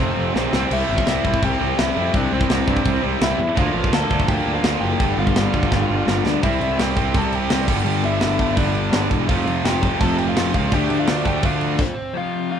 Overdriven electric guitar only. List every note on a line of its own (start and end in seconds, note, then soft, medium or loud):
0.00 0.32 C4 medium
0.00 0.32 C5 medium
0.37 0.69 C4 medium
0.37 0.73 C5 medium
0.73 1.06 E4 medium
0.73 1.08 E5 loud
1.09 1.41 E4 medium
1.09 1.45 E5 loud
1.44 1.77 G4 medium
1.44 1.79 G5 loud
1.79 2.12 E4 medium
1.79 2.15 E5 loud
2.16 2.32 D4 medium
2.16 2.33 D5 loud
2.33 3.00 C4 medium
2.33 3.04 C5 loud
3.22 3.55 E4 medium
3.22 3.58 E5 loud
3.58 3.91 F4 medium
3.58 3.94 F5 medium
3.94 4.27 A4 medium
3.94 4.28 A5 medium
4.28 4.54 G4 medium
4.28 4.55 G5 loud
4.55 4.80 F4 medium
4.55 4.80 F5 medium
4.80 5.15 G4 medium
4.80 5.18 G5 loud
5.19 6.22 F4 medium
5.19 6.22 F5 medium
6.44 6.77 E4 medium
6.44 6.81 E5 medium
6.81 7.13 G4 medium
6.81 7.17 G5 loud
7.18 7.33 A4 medium
7.18 7.35 A5 loud
7.35 7.67 G4 medium
7.35 7.68 G5 loud
7.69 8.02 G4 medium
7.69 8.05 G5 medium
8.05 8.54 E4 medium
8.05 8.58 E5 loud
8.57 9.07 D4 medium
8.57 9.08 D5 medium
9.29 9.62 F4 medium
9.29 9.65 F5 loud
9.66 9.99 G4 medium
9.66 10.00 G5 medium
10.01 10.18 A4 medium
10.01 10.18 A5 loud
10.19 10.27 G4 medium
10.19 10.28 G5 medium
10.28 10.53 F4 medium
10.28 10.54 F5 medium
10.55 10.72 F4 medium
10.55 10.73 F5 medium
10.73 10.98 G4 medium
10.73 10.99 G5 medium
11.00 11.24 F4 medium
11.00 11.27 F5 medium
11.27 11.43 G4 medium
11.27 11.45 G5 medium
11.45 11.94 F4 medium
11.45 11.94 F5 medium
11.80 12.12 C4 medium
11.80 12.17 C5 medium
12.17 12.49 F4 medium
12.17 12.51 F5 loud
12.51 12.60 F4 medium
12.51 12.60 F5 medium